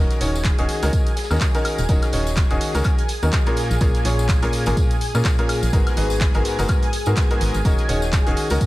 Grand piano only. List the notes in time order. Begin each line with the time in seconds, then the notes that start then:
Already playing: D#3 C#4 D#4 F#4 A#4
0.21 D#3 C#4 D#4 F#4 C#5
0.59 D#3 C#4 D#4 F#4 G#4
0.83 D#3 C#4 D#4 F#4 A#4
1.31 D#3 C#4 D#4 F#4 A#4
1.55 D#3 C#4 D#4 F#4 A#4
1.89 D#3 C#4 D#4 F#4 A#4
2.13 D#3 C#4 D#4 F#4 C#5
2.51 D#3 C#4 D#4 F#4 G#4
2.75 D#3 C#4 D#4 F#4 A#4
3.23 D#3 C#4 D#4 F#4 A#4
3.47 A#2 C#4 F4 G#4 A#4
3.81 A#2 C#4 F4 G#4 A#4
4.05 A#2 C#4 F4 G#4 C#5
4.43 A#2 C#4 F4 G#4 A#4
4.67 A#2 C#4 F4 G#4 A#4
5.15 A#2 C#4 F4 G#4 A#4
5.39 A#2 C#4 F4 G#4 A#4
5.73 G#2 B3 F#4 G#4 A#4
5.97 G#2 B3 F#4 G#4 B4
6.35 G#2 B3 F#4 G#4 A#4
6.59 G#2 B3 F#4 G#4 A#4
7.07 G#2 B3 F#4 G#4 A#4
7.31 G#2 B3 F#4 G#4 A#4
7.65 D#3 C#4 D#4 F#4 A#4
7.89 D#3 C#4 D#4 F#4 C#5
8.27 D#3 C#4 D#4 F#4 G#4
8.51 D#3 C#4 D#4 F#4 A#4